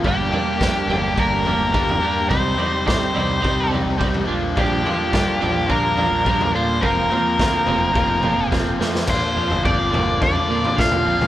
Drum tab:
CC |----------------|----------------|----------------|----------------|
SD |----o-----------|----o-----------|----o-----------|----o-------o-oo|
T2 |----------------|----------------|----------------|------o---o-----|
FT |o-o---o---o--o--|o-o---o---o--o--|o-o---o---o--o--|o-o---o---o-----|
BD |o---o---o---o---|o---o---o---o---|o---o---o---o---|o---o---o---o---|

CC |x---------------|
SD |------------o---|
T2 |------o------o-o|
FT |o--oo-o-oo-o-o-o|
BD |o---o---o---o---|